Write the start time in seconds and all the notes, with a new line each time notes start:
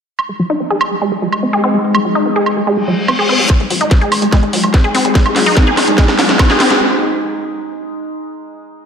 0.19 G#3 D#4, high woodblock
0.29 G#3
0.39 F#3
0.50 D#4
0.60 C4
0.70 G#4
0.81 high woodblock
0.91 G#3
1.01 G#3
1.12 G#3
1.22 F#3
1.32 high woodblock
1.43 C4
1.53 G#4
1.64 C4
1.74 G#3
1.95 G#3, high woodblock
2.05 F#3
2.15 D#4
2.26 C4
2.36 G#4
2.46 high woodblock
2.57 G#3
2.67 G#3, reverse cymbal
2.77 G#3
2.88 F#3
3.08 C4, high woodblock
3.19 G#4
3.29 C4
3.39 G#3
3.50 G#3 D#4, kick, snare, closed hi-hat, riser, high woodblock
3.60 G#1 G#3, closed hi-hat
3.70 G#1 F#3, open hi-hat
3.81 G#1 D#4, closed hi-hat
3.91 C4, kick, snare, closed hi-hat
4.01 G#1 G#4, closed hi-hat
4.12 A1, open hi-hat, high woodblock
4.22 G#1 G#3, closed hi-hat
4.32 G#3, kick, snare, closed hi-hat
4.43 G#1 G#3, closed hi-hat
4.53 G#1 F#3, open hi-hat
4.64 G#1, closed hi-hat, high woodblock
4.74 C4, kick, snare, closed hi-hat
4.84 G#1 G#4, closed hi-hat
4.95 G#1 C4, open hi-hat
5.05 G#1 G#3, closed hi-hat
5.15 kick, snare, closed hi-hat
5.26 G#1 G#3, closed hi-hat, high woodblock
5.36 G#1 F#3, snare, open hi-hat
5.46 G#1 D#4, open hi-hat
5.57 C4, kick, snare
5.67 G#1 G#4, closed hi-hat
5.77 A1, snare, open hi-hat, high woodblock
5.88 G#1 G#3, closed hi-hat
5.98 G#3, kick, snare, closed hi-hat
6.08 G#1 G#3, snare, closed hi-hat
6.19 G#1 F#3, snare, open hi-hat
6.29 G#1, snare, closed hi-hat
6.39 C4, kick, snare, closed hi-hat, high woodblock
6.50 G#1 G#4, snare, closed hi-hat
6.60 G#1 C4, snare, open hi-hat
6.70 G#1 G#3, snare, closed hi-hat